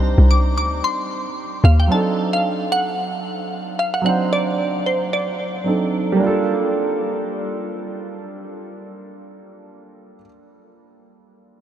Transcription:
Already playing: log drum bass C2, grand piano G3 C4 D4 D#4 C5, synth pluck A#5
0.18 log drum bass C2
0.31 synth pluck D6
0.57 log drum bass D2, synth pluck D6
0.84 synth pluck C6
1.64 log drum bass D#2, synth pluck F5
1.80 synth pluck G5
1.87 grand piano F#3 C4 D4
1.92 grand piano D#4 A4, synth pluck A5
2.33 synth pluck F5
2.72 synth pluck F#5
3.79 synth pluck F5
3.94 synth pluck F#5
4.01 grand piano F#3 C4 D4
4.06 grand piano D#4 C5, synth pluck F#5
4.33 synth pluck D5
4.86 synth pluck C5
5.13 synth pluck D5
5.64 grand piano F#3 C4 D4 D#4 A4
6.12 grand piano G3 A#3
6.19 grand piano D4 F4
6.27 grand piano A4

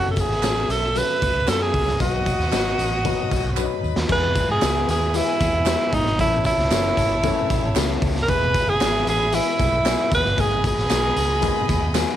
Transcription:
Already playing: fingered electric bass F#1, upright piano F#3 C#4 A4, violin section E5 E6
0.11 tenor saxophone A4
0.16 tenor saxophone G#4, kick, closed hi-hat, tambourine
0.29 fingered electric bass G#1, snare
0.42 fingered electric bass A1, upright piano F#3 C#4 A4, snare, clap, closed hi-hat, tambourine, high conga
0.69 fingered electric bass B1, tenor saxophone A4, closed hi-hat, tambourine
0.94 upright piano F#3 C#4 A4, tenor saxophone B4, closed hi-hat, tambourine, muted conga, low conga
1.22 fingered electric bass C#2, kick, closed hi-hat, tambourine, muted conga
1.35 fingered electric bass C#2
1.46 fingered electric bass F#2, upright piano F#3 C#4 G#4, tenor saxophone A4, snare, clap, closed hi-hat, tambourine, high conga
1.54 upright piano A4
1.62 tenor saxophone G#4
1.74 fingered electric bass C#2, kick, open hi-hat
1.87 snare, high conga
1.99 fingered electric bass B1, upright piano F#3 D#4 B4, tenor saxophone F#4, violin section D#5 D#6, kick, closed hi-hat, tambourine, muted conga
2.26 kick, closed hi-hat, tambourine
2.39 fingered electric bass D#2, snare
2.51 fingered electric bass G#1, upright piano F#3 D#4 B4, snare, clap, closed hi-hat, tambourine, high conga
2.79 fingered electric bass A1, closed hi-hat, tambourine
3.04 upright piano F#3 D#4 B4, kick, closed hi-hat, tambourine, muted conga, low conga
3.31 fingered electric bass B1, kick, closed hi-hat, tambourine, muted conga
3.44 fingered electric bass B1
3.56 upright piano F#3 D4 B4, violin section B4 B5, clap, tambourine, high conga
3.63 upright piano D#4
3.83 fingered electric bass D#2, tambourine
3.96 fingered electric bass D#2, snare, high conga
4.08 fingered electric bass E2, upright piano E3 G#3 B3 G#4, violin section E4 B4 G#5, kick, crash, tambourine, muted conga
4.12 tenor saxophone B4
4.35 kick, closed hi-hat, tambourine
4.49 fingered electric bass G#2, tenor saxophone G#4
4.61 fingered electric bass C#2, upright piano E3 G#3 B3 G4, snare, clap, closed hi-hat, tambourine, high conga
4.69 upright piano G#4
4.88 fingered electric bass D#2, tenor saxophone G#4, closed hi-hat, tambourine
5.14 upright piano E3 G#3 B3 G4, tenor saxophone E4, closed hi-hat, tambourine
5.21 upright piano G#4
5.41 fingered electric bass E2, kick, closed hi-hat, tambourine, muted conga
5.53 fingered electric bass E2
5.65 upright piano E3 G#3 B3 G4, snare, clap, closed hi-hat, tambourine, high conga
5.72 upright piano G#4
5.80 high conga
5.92 fingered electric bass G#2, tenor saxophone D#4, kick, closed hi-hat, tambourine
6.05 fingered electric bass G#1, snare, high conga
6.19 fingered electric bass A1, upright piano E3 A3 C#4 A4, violin section E4 C#5 A5, tenor saxophone E4, kick, closed hi-hat, tambourine, muted conga
6.44 tenor saxophone E4, kick, closed hi-hat, tambourine
6.58 fingered electric bass C#2, snare
6.70 fingered electric bass F#1, upright piano E3 A3 C#4 A4, snare, clap, closed hi-hat, tambourine, high conga
6.97 fingered electric bass G#1, kick, closed hi-hat, tambourine
7.23 upright piano E3 A3 C#4 A4, kick, closed hi-hat, tambourine, muted conga
7.50 fingered electric bass A1, kick, closed hi-hat, tambourine, muted conga
7.63 fingered electric bass A1
7.75 fingered electric bass C#2, upright piano E3 A3 C#4 A4, snare, clap, closed hi-hat, tambourine, high conga
7.89 high conga
8.02 fingered electric bass C#2, kick, open hi-hat, tambourine
8.15 snare, high conga
8.22 tenor saxophone A#4
8.28 fingered electric bass E1, upright piano E3 G#3 B3 G#4, violin section G#4 E5 B5, tenor saxophone B4, kick, closed hi-hat, tambourine, muted conga
8.54 kick, closed hi-hat, tambourine
8.67 fingered electric bass F#1, tenor saxophone G#4
8.80 fingered electric bass G#1, upright piano E3 G#3 B3 G4, snare, clap, closed hi-hat, tambourine, high conga
8.89 upright piano G#4
9.07 fingered electric bass A1, tenor saxophone G#4, closed hi-hat, tambourine
9.32 upright piano E3 G#3 B3 G#4, tenor saxophone E4, closed hi-hat, tambourine, muted conga
9.59 fingered electric bass B1, kick, closed hi-hat, tambourine, muted conga
9.72 fingered electric bass B1
9.85 upright piano E3 G#3 B3 G#4, snare, clap, closed hi-hat, tambourine, high conga
9.99 high conga
10.12 fingered electric bass D#2, tenor saxophone B4, kick, closed hi-hat, tambourine
10.25 fingered electric bass G1, snare, high conga
10.37 fingered electric bass G#1, upright piano D#3 G#3 B3 G#4, violin section G#4 D#5 B5, tenor saxophone G#4, kick, closed hi-hat, tambourine, muted conga
10.64 tenor saxophone G#4, kick, closed hi-hat, tambourine
10.77 fingered electric bass A1, snare
10.89 fingered electric bass B1, upright piano D#3 G#3 B3 G#4, snare, clap, closed hi-hat, tambourine, high conga
11.16 fingered electric bass C#2, closed hi-hat, tambourine
11.41 upright piano D#3 G#3 B3 G#4, kick, closed hi-hat, tambourine, muted conga
11.69 fingered electric bass D#2, kick, closed hi-hat, tambourine, muted conga
11.81 fingered electric bass D#2
11.94 upright piano D#3 G#3 A3 G#4, snare, clap, closed hi-hat, tambourine, high conga
12.02 upright piano B3
12.09 high conga

